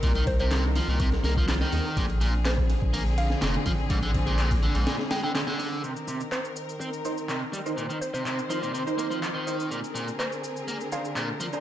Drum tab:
RD |xxxxx-x-x-x-x-x-|xxx-x-x-x-x-xxx-|xxxxxxxxx-x-x-x-|----------------|
SH |----------------|----------------|----------------|xxxxxxxxxxxxx-xx|
CP |----x-------x---|----x-------x---|----x-------x---|----x-------x---|
SD |----o----oo-oo--|----o------oo---|--------ooo-oo--|----------------|
BD |o-o-----o--o----|o----o-o------o-|o-o--o----------|----------------|

RD |----------------|----------------|
SH |xxxxxxxxxxxxx-xx|xxxxxxxxxxxxx-xx|
CP |----x-------x---|----x-------x---|
SD |----------------|----------------|
BD |----------------|----------------|